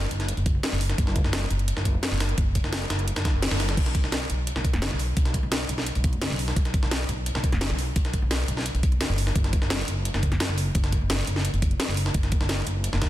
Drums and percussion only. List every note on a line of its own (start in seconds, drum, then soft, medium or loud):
0.02 closed hi-hat soft
0.11 closed hi-hat medium
0.20 snare soft
0.20 closed hi-hat soft
0.28 closed hi-hat medium
0.37 closed hi-hat soft
0.46 kick loud
0.46 closed hi-hat medium
0.63 snare loud
0.63 closed hi-hat medium
0.63 closed hi-hat loud
0.81 closed hi-hat medium
0.81 open hi-hat medium
0.89 snare medium
0.89 closed hi-hat soft
0.98 kick loud
0.98 closed hi-hat medium
1.07 snare soft
1.16 kick loud
1.16 closed hi-hat medium
1.24 snare medium
1.33 snare loud
1.33 closed hi-hat medium
1.33 closed hi-hat loud
1.51 closed hi-hat medium
1.59 closed hi-hat soft
1.68 closed hi-hat medium
1.68 closed hi-hat loud
1.77 snare medium
1.85 kick medium
1.85 closed hi-hat medium
2.03 snare loud
2.03 closed hi-hat loud
2.03 closed hi-hat medium
2.12 snare soft
2.20 snare loud
2.20 closed hi-hat medium
2.20 open hi-hat medium
2.29 closed hi-hat soft
2.38 kick loud
2.38 closed hi-hat loud
2.38 closed hi-hat medium
2.55 kick medium
2.55 closed hi-hat medium
2.64 snare soft
2.73 snare loud
2.73 closed hi-hat loud
2.73 closed hi-hat medium
2.82 closed hi-hat soft
2.90 snare loud
2.90 closed hi-hat medium
2.99 closed hi-hat soft
3.08 closed hi-hat loud
3.08 closed hi-hat medium
3.16 snare loud
3.16 snare soft
3.16 closed hi-hat soft
3.16 closed hi-hat medium
3.25 kick loud
3.25 snare loud
3.25 closed hi-hat medium
3.42 snare loud
3.42 closed hi-hat loud
3.42 closed hi-hat medium
3.51 snare loud
3.51 closed hi-hat medium
3.60 snare loud
3.60 closed hi-hat medium
3.60 open hi-hat medium
3.69 snare loud
3.69 closed hi-hat medium
3.77 kick loud
3.77 closed hi-hat medium
3.77 closed hi-hat loud
3.77 crash loud
3.86 snare soft
3.86 closed hi-hat soft
3.95 kick loud
3.95 closed hi-hat medium
4.04 snare medium
4.12 snare loud
4.12 closed hi-hat loud
4.12 closed hi-hat medium
4.30 closed hi-hat medium
4.47 closed hi-hat medium
4.47 closed hi-hat loud
4.56 snare medium
4.56 snare soft
4.64 kick medium
4.64 closed hi-hat medium
4.73 snare medium
4.73 closed hi-hat soft
4.82 snare loud
4.82 closed hi-hat loud
4.91 snare soft
4.99 closed hi-hat medium
4.99 open hi-hat medium
5.17 kick loud
5.17 closed hi-hat medium
5.25 snare medium
5.25 closed hi-hat soft
5.34 kick medium
5.34 closed hi-hat medium
5.52 snare loud
5.52 closed hi-hat medium
5.61 closed hi-hat soft
5.69 closed hi-hat medium
5.78 snare soft
5.86 closed hi-hat medium
5.95 closed hi-hat soft
6.04 kick loud
6.04 closed hi-hat medium
6.13 closed hi-hat soft
6.22 snare loud
6.22 closed hi-hat medium
6.22 closed hi-hat loud
6.39 closed hi-hat medium
6.39 open hi-hat medium
6.48 snare medium
6.56 kick loud
6.56 closed hi-hat medium
6.56 closed hi-hat loud
6.65 snare soft
6.65 closed hi-hat soft
6.74 kick loud
6.74 closed hi-hat medium
6.83 snare medium
6.91 snare loud
6.91 closed hi-hat medium
7.09 closed hi-hat medium
7.26 closed hi-hat medium
7.35 snare medium
7.35 snare soft
7.44 kick medium
7.44 closed hi-hat medium
7.52 snare medium
7.52 closed hi-hat soft
7.61 snare loud
7.61 closed hi-hat loud
7.61 closed hi-hat medium
7.70 snare soft
7.79 closed hi-hat medium
7.79 open hi-hat medium
7.96 kick loud
7.96 closed hi-hat medium
8.05 snare medium
8.05 closed hi-hat soft
8.13 kick medium
8.13 closed hi-hat medium
8.31 snare loud
8.31 closed hi-hat medium
8.40 closed hi-hat soft
8.48 closed hi-hat medium
8.57 snare soft
8.66 closed hi-hat medium
8.75 closed hi-hat soft
8.83 kick loud
8.83 closed hi-hat medium
8.92 closed hi-hat soft
9.01 snare loud
9.01 closed hi-hat medium
9.18 closed hi-hat medium
9.18 open hi-hat medium
9.27 snare medium
9.36 kick loud
9.36 closed hi-hat medium
9.44 snare soft
9.44 closed hi-hat soft
9.53 kick loud
9.53 closed hi-hat medium
9.62 snare medium
9.70 snare loud
9.70 closed hi-hat medium
9.88 closed hi-hat medium
10.05 closed hi-hat medium
10.14 snare medium
10.14 snare soft
10.23 kick medium
10.23 closed hi-hat medium
10.32 snare soft
10.32 closed hi-hat soft
10.40 snare loud
10.40 closed hi-hat medium
10.40 closed hi-hat loud
10.49 snare soft
10.58 closed hi-hat medium
10.58 open hi-hat medium
10.75 kick loud
10.75 closed hi-hat medium
10.84 snare medium
10.84 closed hi-hat soft
10.92 kick medium
10.92 closed hi-hat medium
11.10 snare loud
11.10 closed hi-hat medium
11.19 closed hi-hat soft
11.27 closed hi-hat medium
11.36 snare soft
11.45 closed hi-hat medium
11.54 closed hi-hat soft
11.62 kick loud
11.62 closed hi-hat medium
11.71 closed hi-hat soft
11.80 snare loud
11.80 closed hi-hat loud
11.80 closed hi-hat medium
11.97 closed hi-hat medium
11.97 open hi-hat medium
12.06 snare medium
12.14 kick loud
12.14 closed hi-hat medium
12.23 snare soft
12.23 closed hi-hat soft
12.32 kick loud
12.32 closed hi-hat medium
12.41 snare medium
12.49 snare loud
12.49 closed hi-hat loud
12.49 closed hi-hat medium
12.67 closed hi-hat medium
12.84 closed hi-hat loud
12.84 closed hi-hat medium
12.93 snare medium
12.93 snare soft
13.02 kick medium
13.02 snare loud
13.02 closed hi-hat medium